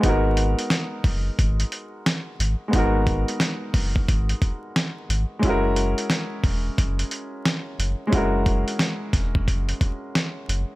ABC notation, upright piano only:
X:1
M:4/4
L:1/8
Q:"Swing 16ths" 1/4=89
K:G#m
V:1 name="Upright piano"
[G,B,DFA]8 | [G,B,DFA]8 | [G,CEFA]8 | [G,CEFA]8 |]